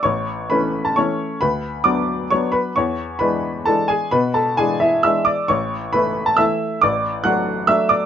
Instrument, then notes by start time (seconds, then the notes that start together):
upright piano
0.03 A1 C#5 C#6
0.50 E3 A3 C#4 B4 B5
0.85 A5
0.96 E3 A3 C#4 C#5 C#6
1.41 D2 B4 B5
1.84 F#3 B3 D4 D5 D6
2.31 F#3 B3 D4 C#5 C#6
2.52 B4 B5
2.76 E2 C#5 C#6
3.19 E3 G#3 D4 B4 B5
3.65 E3 G#3 D4 A4 A5
3.88 G#4 G#5
4.11 B2 B4 B5
4.34 A4 A5
4.57 E3 G#3 D4 G#4 G#5
4.80 E4 E5
5.03 E3 G#3 D4 E5 E6
5.25 D5 D6
5.48 A1 C#5 C#6
5.93 E3 A3 E4 B4 B5
6.26 A5
6.37 E3 A3 E4 E5 E6
6.81 A1 D5 D6
7.24 F#3 A3 D4 F#5 F#6
7.67 F#3 A3 D4 E5 E6
7.89 D5 D6